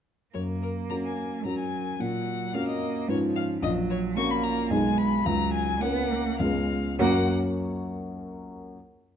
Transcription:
0.34 0.88 F#2 soft
0.34 1.47 A#3 soft
0.34 0.42 C#5 medium
0.63 0.71 A#4 soft
0.90 1.41 C#4 soft
0.90 1.41 F#4 soft
0.90 1.42 A#4 soft
0.90 0.95 A#5 medium
1.05 1.45 G#5 soft
1.45 1.99 F#3 soft
1.45 1.96 C#4 soft
1.45 1.96 F#4 soft
1.45 1.96 A#4 soft
1.45 1.58 A#5 medium
1.59 2.02 G#5 medium
2.00 2.53 A#2 soft
2.00 2.56 F#3 soft
2.00 2.57 F#5 medium
2.54 3.10 A#3 soft
2.54 3.05 C#4 soft
2.54 3.05 F#4 soft
2.54 3.05 A#4 soft
2.54 2.68 F5 medium
2.69 3.08 D#5 medium
3.08 3.61 G#2 medium
3.08 3.61 F3 medium
3.08 3.58 C#4 soft
3.08 3.59 F4 soft
3.08 3.59 B4 soft
3.08 3.18 C#5 medium
3.36 3.44 F5 medium
3.62 4.15 A#1 medium
3.62 4.18 F#3 medium
3.62 3.71 D#5 medium
3.90 3.98 C#5 medium
4.16 4.72 A#3 medium
4.16 4.67 C#4 soft
4.16 4.67 F#4 soft
4.16 4.67 A#4 soft
4.16 4.32 C#6 loud
4.31 4.45 B5 medium
4.44 4.70 A#5 medium
4.70 5.24 B1 medium
4.70 5.27 G#3 medium
4.70 5.22 B3 soft
4.70 5.22 D#4 soft
4.70 5.23 G#4 soft
4.70 5.00 G#5 medium
4.98 5.27 B5 medium
5.26 5.80 C#2 medium
5.26 5.83 F#3 medium
5.26 5.53 A#5 medium
5.54 5.83 G#5 medium
5.81 6.36 A#3 soft
5.81 6.13 B3 medium
5.81 6.36 C#4 soft
5.81 6.36 A#4 soft
5.81 6.39 F#5 medium
6.11 6.41 A#3 medium
6.39 6.97 C#2 medium
6.39 6.78 G#3 soft
6.39 6.95 B3 soft
6.39 6.95 C#4 soft
6.39 6.96 G#4 soft
6.39 6.98 F5 medium
6.99 7.32 F#2 medium
6.99 7.32 F#3 medium
6.99 7.31 A#3 medium
6.99 7.32 A#3 medium
6.99 7.32 C#4 medium
6.99 7.32 F#4 medium
6.99 7.32 C#5 medium
6.99 7.32 F#5 medium

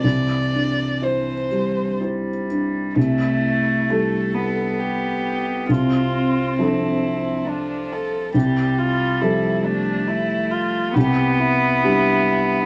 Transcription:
0.04 2.92 C2 soft
0.04 1.97 E3 soft
0.04 1.05 D5 soft
0.53 1.32 G2 soft
1.02 1.47 E4 soft
1.02 1.48 C5 soft
1.02 2.01 C5 soft
1.51 2.29 G3 soft
2.01 2.98 G3 soft
2.01 2.45 E4 soft
2.01 2.45 C5 soft
2.50 2.97 G2 soft
2.96 3.85 C2 soft
2.96 4.36 A3 medium
2.96 3.91 E4 soft
3.89 5.66 G3 soft
3.89 5.65 E4 soft
3.89 4.80 A4 soft
3.89 5.66 A4 soft
4.34 5.71 B3 medium
4.79 5.69 G4 soft
5.69 6.55 C2 soft
5.69 7.48 C4 medium
5.69 6.57 F4 soft
6.59 8.30 F3 soft
6.59 8.31 D4 soft
6.59 7.49 E4 soft
6.59 8.31 A4 soft
7.46 8.34 F3 medium
7.46 7.94 D4 soft
7.92 8.34 A4 soft
8.34 9.19 C2 soft
8.34 9.66 G3 medium
8.34 8.80 G4 soft
8.78 9.22 F4 soft
9.21 10.91 F3 soft
9.21 10.91 G3 soft
9.21 9.66 E4 soft
9.21 10.91 A4 soft
9.64 10.95 A3 medium
9.64 10.09 D4 soft
10.08 10.52 E4 soft
10.51 10.96 F4 soft
10.94 11.82 C2 soft
10.94 12.66 B3 medium
10.94 11.40 G4 soft
11.39 12.66 E4 medium
11.84 12.66 G3 soft
11.84 12.66 D4 soft
11.84 12.66 G4 soft

